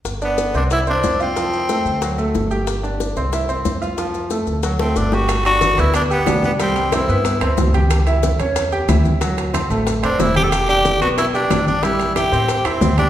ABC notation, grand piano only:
X:1
M:4/4
L:1/8
Q:1/4=183
K:G
V:1 name="Grand piano"
z [Dd]2 [Cc] [Ee] [Cc]2 [=F=f] | [=F,=F]2 [A,A]2 [^F,^F] [A,A]2 [Gg]- | [Gg] [Dd]2 [Cc] [Ee] [Cc]2 [=F=f] | [=F,=F]2 [A,A]2 [^F,^F] [A,A]2 [Gg] |
z [Dd]2 [B,B]2 [Gg] [Dd]2 | [G,G]2 [Cc] [B,B]2 [Cc]2 [Gg]- | [Gg] [Ee]2 [^C^c]2 [Gg] [Ee]2 | [F,F]2 [Cc] [A,A]2 [Cc]2 [Gg]- |
[Gg] [Dd]2 [B,B]2 [Gg] [Dd]2 | [G,G]2 [Ee] [Cc]2 [Ee]2 [Gg] |]